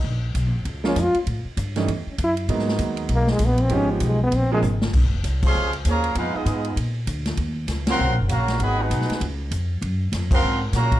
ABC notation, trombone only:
X:1
M:4/4
L:1/8
Q:"Swing" 1/4=196
K:Bbphr
V:1 name="Trombone"
z4 z D F z | z4 z ^C =E z | z4 B, A, C =C | D F, A, C =C A, z2 |
[K:Bbm] z8 | z8 | z8 | z8 |
z8 |]